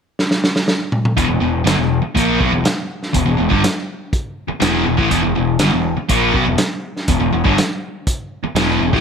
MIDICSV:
0, 0, Header, 1, 6, 480
1, 0, Start_track
1, 0, Tempo, 492611
1, 1138, Time_signature, 4, 2, 24, 8
1, 8774, End_track
2, 0, Start_track
2, 0, Title_t, "Distorted electric guitar"
2, 0, Program_c, 0, 30
2, 1140, Note_on_c, 0, 40, 87
2, 1143, Note_on_c, 0, 47, 112
2, 1236, Note_off_c, 0, 40, 0
2, 1238, Note_off_c, 0, 47, 0
2, 1248, Note_on_c, 0, 40, 53
2, 1250, Note_on_c, 0, 47, 58
2, 1365, Note_off_c, 0, 47, 0
2, 1366, Note_off_c, 0, 40, 0
2, 1377, Note_on_c, 0, 40, 57
2, 1377, Note_on_c, 0, 47, 65
2, 1569, Note_off_c, 0, 47, 0
2, 1570, Note_off_c, 0, 40, 0
2, 1608, Note_on_c, 0, 43, 88
2, 1618, Note_on_c, 0, 50, 97
2, 1726, Note_off_c, 0, 43, 0
2, 1731, Note_off_c, 0, 50, 0
2, 1734, Note_on_c, 0, 40, 57
2, 1737, Note_on_c, 0, 47, 61
2, 1928, Note_off_c, 0, 40, 0
2, 1929, Note_off_c, 0, 47, 0
2, 2093, Note_on_c, 0, 46, 79
2, 2098, Note_on_c, 0, 58, 85
2, 2101, Note_on_c, 0, 53, 73
2, 2329, Note_off_c, 0, 46, 0
2, 2331, Note_off_c, 0, 58, 0
2, 2332, Note_off_c, 0, 53, 0
2, 2334, Note_on_c, 0, 47, 85
2, 2340, Note_on_c, 0, 54, 95
2, 2449, Note_off_c, 0, 47, 0
2, 2452, Note_off_c, 0, 54, 0
2, 2461, Note_on_c, 0, 40, 53
2, 2463, Note_on_c, 0, 47, 65
2, 2560, Note_off_c, 0, 40, 0
2, 2581, Note_off_c, 0, 47, 0
2, 3052, Note_on_c, 0, 40, 58
2, 3059, Note_on_c, 0, 47, 68
2, 3162, Note_off_c, 0, 47, 0
2, 3163, Note_off_c, 0, 40, 0
2, 3174, Note_on_c, 0, 47, 66
2, 3175, Note_on_c, 0, 40, 59
2, 3275, Note_off_c, 0, 40, 0
2, 3283, Note_off_c, 0, 47, 0
2, 3286, Note_on_c, 0, 40, 60
2, 3295, Note_on_c, 0, 47, 62
2, 3399, Note_off_c, 0, 40, 0
2, 3403, Note_on_c, 0, 43, 86
2, 3404, Note_off_c, 0, 47, 0
2, 3408, Note_on_c, 0, 50, 87
2, 3524, Note_off_c, 0, 43, 0
2, 3526, Note_off_c, 0, 50, 0
2, 4481, Note_on_c, 0, 40, 94
2, 4485, Note_on_c, 0, 47, 98
2, 4489, Note_on_c, 0, 52, 102
2, 4710, Note_off_c, 0, 40, 0
2, 4710, Note_off_c, 0, 47, 0
2, 4721, Note_on_c, 0, 47, 72
2, 4722, Note_on_c, 0, 40, 64
2, 4727, Note_off_c, 0, 52, 0
2, 4839, Note_off_c, 0, 47, 0
2, 4843, Note_on_c, 0, 45, 91
2, 4851, Note_off_c, 0, 40, 0
2, 4851, Note_on_c, 0, 52, 96
2, 4957, Note_on_c, 0, 40, 90
2, 4959, Note_off_c, 0, 45, 0
2, 4963, Note_on_c, 0, 47, 94
2, 4968, Note_off_c, 0, 52, 0
2, 5081, Note_off_c, 0, 40, 0
2, 5084, Note_off_c, 0, 47, 0
2, 5091, Note_on_c, 0, 40, 64
2, 5095, Note_on_c, 0, 47, 57
2, 5203, Note_off_c, 0, 40, 0
2, 5204, Note_off_c, 0, 47, 0
2, 5215, Note_on_c, 0, 40, 58
2, 5216, Note_on_c, 0, 47, 65
2, 5409, Note_off_c, 0, 40, 0
2, 5410, Note_off_c, 0, 47, 0
2, 5457, Note_on_c, 0, 43, 84
2, 5458, Note_on_c, 0, 50, 83
2, 5571, Note_off_c, 0, 43, 0
2, 5572, Note_off_c, 0, 50, 0
2, 5577, Note_on_c, 0, 40, 58
2, 5577, Note_on_c, 0, 47, 55
2, 5770, Note_off_c, 0, 47, 0
2, 5771, Note_off_c, 0, 40, 0
2, 5935, Note_on_c, 0, 46, 89
2, 5940, Note_on_c, 0, 53, 73
2, 5941, Note_on_c, 0, 58, 95
2, 6170, Note_off_c, 0, 46, 0
2, 6173, Note_off_c, 0, 53, 0
2, 6174, Note_off_c, 0, 58, 0
2, 6177, Note_on_c, 0, 47, 94
2, 6184, Note_on_c, 0, 54, 108
2, 6279, Note_off_c, 0, 47, 0
2, 6291, Note_on_c, 0, 47, 71
2, 6293, Note_on_c, 0, 40, 65
2, 6295, Note_off_c, 0, 54, 0
2, 6397, Note_off_c, 0, 40, 0
2, 6416, Note_off_c, 0, 47, 0
2, 6906, Note_on_c, 0, 40, 58
2, 6907, Note_on_c, 0, 47, 73
2, 7002, Note_off_c, 0, 40, 0
2, 7006, Note_off_c, 0, 47, 0
2, 7013, Note_on_c, 0, 40, 57
2, 7018, Note_on_c, 0, 47, 55
2, 7127, Note_off_c, 0, 40, 0
2, 7132, Note_off_c, 0, 47, 0
2, 7138, Note_on_c, 0, 40, 52
2, 7144, Note_on_c, 0, 47, 60
2, 7245, Note_off_c, 0, 40, 0
2, 7249, Note_off_c, 0, 47, 0
2, 7249, Note_on_c, 0, 43, 73
2, 7253, Note_on_c, 0, 50, 88
2, 7367, Note_off_c, 0, 43, 0
2, 7369, Note_off_c, 0, 50, 0
2, 8339, Note_on_c, 0, 40, 88
2, 8344, Note_on_c, 0, 47, 101
2, 8345, Note_on_c, 0, 52, 101
2, 8571, Note_off_c, 0, 40, 0
2, 8574, Note_off_c, 0, 47, 0
2, 8574, Note_off_c, 0, 52, 0
2, 8594, Note_on_c, 0, 40, 66
2, 8601, Note_on_c, 0, 47, 61
2, 8699, Note_off_c, 0, 47, 0
2, 8703, Note_on_c, 0, 45, 82
2, 8706, Note_off_c, 0, 40, 0
2, 8715, Note_on_c, 0, 52, 92
2, 8774, Note_off_c, 0, 45, 0
2, 8774, Note_off_c, 0, 52, 0
2, 8774, End_track
3, 0, Start_track
3, 0, Title_t, "Picked electric bass"
3, 0, Program_c, 1, 34
3, 1143, Note_on_c, 1, 28, 81
3, 1236, Note_off_c, 1, 28, 0
3, 1242, Note_on_c, 1, 28, 77
3, 1361, Note_off_c, 1, 28, 0
3, 1369, Note_on_c, 1, 28, 76
3, 1596, Note_off_c, 1, 28, 0
3, 1615, Note_on_c, 1, 31, 93
3, 1728, Note_off_c, 1, 31, 0
3, 1742, Note_on_c, 1, 28, 74
3, 1963, Note_off_c, 1, 28, 0
3, 2105, Note_on_c, 1, 34, 84
3, 2325, Note_off_c, 1, 34, 0
3, 2342, Note_on_c, 1, 35, 80
3, 2441, Note_off_c, 1, 35, 0
3, 2447, Note_on_c, 1, 28, 65
3, 2563, Note_off_c, 1, 28, 0
3, 3068, Note_on_c, 1, 28, 72
3, 3175, Note_off_c, 1, 28, 0
3, 3180, Note_on_c, 1, 28, 74
3, 3291, Note_off_c, 1, 28, 0
3, 3303, Note_on_c, 1, 28, 68
3, 3412, Note_off_c, 1, 28, 0
3, 3427, Note_on_c, 1, 31, 76
3, 3535, Note_off_c, 1, 31, 0
3, 4503, Note_on_c, 1, 28, 95
3, 4724, Note_off_c, 1, 28, 0
3, 4744, Note_on_c, 1, 28, 70
3, 4850, Note_off_c, 1, 28, 0
3, 4856, Note_on_c, 1, 33, 83
3, 4969, Note_off_c, 1, 33, 0
3, 4982, Note_on_c, 1, 28, 81
3, 5093, Note_off_c, 1, 28, 0
3, 5120, Note_on_c, 1, 28, 73
3, 5222, Note_off_c, 1, 28, 0
3, 5237, Note_on_c, 1, 28, 72
3, 5452, Note_off_c, 1, 28, 0
3, 5477, Note_on_c, 1, 31, 84
3, 5581, Note_off_c, 1, 31, 0
3, 5586, Note_on_c, 1, 28, 79
3, 5806, Note_off_c, 1, 28, 0
3, 5946, Note_on_c, 1, 34, 88
3, 6167, Note_off_c, 1, 34, 0
3, 6181, Note_on_c, 1, 35, 79
3, 6292, Note_off_c, 1, 35, 0
3, 6298, Note_on_c, 1, 28, 70
3, 6411, Note_off_c, 1, 28, 0
3, 6901, Note_on_c, 1, 28, 67
3, 7004, Note_off_c, 1, 28, 0
3, 7010, Note_on_c, 1, 28, 75
3, 7126, Note_off_c, 1, 28, 0
3, 7144, Note_on_c, 1, 28, 67
3, 7254, Note_off_c, 1, 28, 0
3, 7261, Note_on_c, 1, 31, 84
3, 7372, Note_off_c, 1, 31, 0
3, 8332, Note_on_c, 1, 28, 83
3, 8558, Note_off_c, 1, 28, 0
3, 8585, Note_on_c, 1, 28, 67
3, 8693, Note_off_c, 1, 28, 0
3, 8701, Note_on_c, 1, 33, 82
3, 8774, Note_off_c, 1, 33, 0
3, 8774, End_track
4, 0, Start_track
4, 0, Title_t, "Muted distorted electric guitar strokes"
4, 1967, Note_on_c, 9, 29, 53
4, 2065, Note_off_c, 9, 29, 0
4, 2572, Note_on_c, 9, 29, 57
4, 2669, Note_off_c, 9, 29, 0
4, 4368, Note_on_c, 9, 29, 57
4, 4466, Note_off_c, 9, 29, 0
4, 5818, Note_on_c, 9, 29, 48
4, 5915, Note_off_c, 9, 29, 0
4, 6409, Note_on_c, 9, 29, 57
4, 6506, Note_off_c, 9, 29, 0
4, 8223, Note_on_c, 9, 29, 57
4, 8320, Note_off_c, 9, 29, 0
4, 8774, End_track
5, 0, Start_track
5, 0, Title_t, "Muted picked electric bass strokes"
5, 1985, Note_on_c, 9, 29, 37
5, 2083, Note_off_c, 9, 29, 0
5, 2579, Note_on_c, 9, 29, 38
5, 2677, Note_off_c, 9, 29, 0
5, 4389, Note_on_c, 9, 29, 38
5, 4486, Note_off_c, 9, 29, 0
5, 5828, Note_on_c, 9, 29, 39
5, 5926, Note_off_c, 9, 29, 0
5, 8229, Note_on_c, 9, 29, 37
5, 8326, Note_off_c, 9, 29, 0
5, 8774, End_track
6, 0, Start_track
6, 0, Title_t, "Drums"
6, 186, Note_on_c, 9, 38, 57
6, 283, Note_off_c, 9, 38, 0
6, 301, Note_on_c, 9, 38, 59
6, 399, Note_off_c, 9, 38, 0
6, 426, Note_on_c, 9, 38, 80
6, 524, Note_off_c, 9, 38, 0
6, 544, Note_on_c, 9, 38, 72
6, 641, Note_off_c, 9, 38, 0
6, 661, Note_on_c, 9, 38, 85
6, 759, Note_off_c, 9, 38, 0
6, 899, Note_on_c, 9, 45, 87
6, 996, Note_off_c, 9, 45, 0
6, 1025, Note_on_c, 9, 45, 101
6, 1123, Note_off_c, 9, 45, 0
6, 1142, Note_on_c, 9, 36, 88
6, 1147, Note_on_c, 9, 42, 63
6, 1239, Note_off_c, 9, 36, 0
6, 1245, Note_off_c, 9, 42, 0
6, 1628, Note_on_c, 9, 42, 67
6, 1631, Note_on_c, 9, 38, 106
6, 1725, Note_off_c, 9, 42, 0
6, 1728, Note_off_c, 9, 38, 0
6, 2106, Note_on_c, 9, 36, 92
6, 2114, Note_on_c, 9, 42, 57
6, 2203, Note_off_c, 9, 36, 0
6, 2212, Note_off_c, 9, 42, 0
6, 2346, Note_on_c, 9, 36, 96
6, 2443, Note_off_c, 9, 36, 0
6, 2585, Note_on_c, 9, 42, 61
6, 2588, Note_on_c, 9, 38, 111
6, 2683, Note_off_c, 9, 42, 0
6, 2686, Note_off_c, 9, 38, 0
6, 2948, Note_on_c, 9, 38, 30
6, 3046, Note_off_c, 9, 38, 0
6, 3064, Note_on_c, 9, 42, 63
6, 3065, Note_on_c, 9, 36, 83
6, 3161, Note_off_c, 9, 42, 0
6, 3162, Note_off_c, 9, 36, 0
6, 3424, Note_on_c, 9, 36, 95
6, 3522, Note_off_c, 9, 36, 0
6, 3548, Note_on_c, 9, 42, 65
6, 3551, Note_on_c, 9, 38, 99
6, 3645, Note_off_c, 9, 42, 0
6, 3648, Note_off_c, 9, 38, 0
6, 4023, Note_on_c, 9, 36, 92
6, 4024, Note_on_c, 9, 42, 52
6, 4120, Note_off_c, 9, 36, 0
6, 4122, Note_off_c, 9, 42, 0
6, 4500, Note_on_c, 9, 42, 61
6, 4503, Note_on_c, 9, 38, 104
6, 4597, Note_off_c, 9, 42, 0
6, 4600, Note_off_c, 9, 38, 0
6, 4859, Note_on_c, 9, 36, 101
6, 4956, Note_off_c, 9, 36, 0
6, 4979, Note_on_c, 9, 36, 84
6, 4981, Note_on_c, 9, 42, 61
6, 5077, Note_off_c, 9, 36, 0
6, 5079, Note_off_c, 9, 42, 0
6, 5449, Note_on_c, 9, 42, 65
6, 5452, Note_on_c, 9, 38, 90
6, 5547, Note_off_c, 9, 42, 0
6, 5549, Note_off_c, 9, 38, 0
6, 5939, Note_on_c, 9, 42, 64
6, 5940, Note_on_c, 9, 36, 86
6, 6036, Note_off_c, 9, 42, 0
6, 6038, Note_off_c, 9, 36, 0
6, 6181, Note_on_c, 9, 36, 91
6, 6279, Note_off_c, 9, 36, 0
6, 6413, Note_on_c, 9, 42, 65
6, 6416, Note_on_c, 9, 38, 100
6, 6510, Note_off_c, 9, 42, 0
6, 6513, Note_off_c, 9, 38, 0
6, 6787, Note_on_c, 9, 38, 31
6, 6885, Note_off_c, 9, 38, 0
6, 6898, Note_on_c, 9, 42, 60
6, 6901, Note_on_c, 9, 36, 87
6, 6995, Note_off_c, 9, 42, 0
6, 6999, Note_off_c, 9, 36, 0
6, 7263, Note_on_c, 9, 36, 94
6, 7361, Note_off_c, 9, 36, 0
6, 7389, Note_on_c, 9, 42, 63
6, 7392, Note_on_c, 9, 38, 97
6, 7486, Note_off_c, 9, 42, 0
6, 7489, Note_off_c, 9, 38, 0
6, 7863, Note_on_c, 9, 36, 85
6, 7863, Note_on_c, 9, 42, 61
6, 7961, Note_off_c, 9, 36, 0
6, 7961, Note_off_c, 9, 42, 0
6, 8344, Note_on_c, 9, 42, 55
6, 8347, Note_on_c, 9, 38, 113
6, 8441, Note_off_c, 9, 42, 0
6, 8444, Note_off_c, 9, 38, 0
6, 8705, Note_on_c, 9, 36, 95
6, 8716, Note_on_c, 9, 38, 31
6, 8774, Note_off_c, 9, 36, 0
6, 8774, Note_off_c, 9, 38, 0
6, 8774, End_track
0, 0, End_of_file